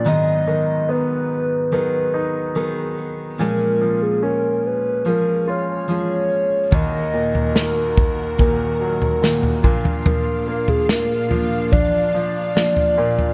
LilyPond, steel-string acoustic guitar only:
\new Staff \with { instrumentName = "Steel-string acoustic guitar" } { \time 4/4 \key bes \phrygian \tempo 4 = 72 <aes, ees ges ces' ees' aes'>2 <ges ces' ees' aes'>4 <ges ces' ees' aes'>4 | <bes, f aes des' aes'>2 <f aes des' aes'>4 <f aes des' aes'>4 | <ees bes ees' ges'>2 <ees bes ees' ges'>4 <ees bes ees' ges'>8 <bes, f bes d' f'>8~ | <bes, f bes d' f'>4. <bes d' f'>8 <f bes d' f'>4 <f bes d' f'>4 | }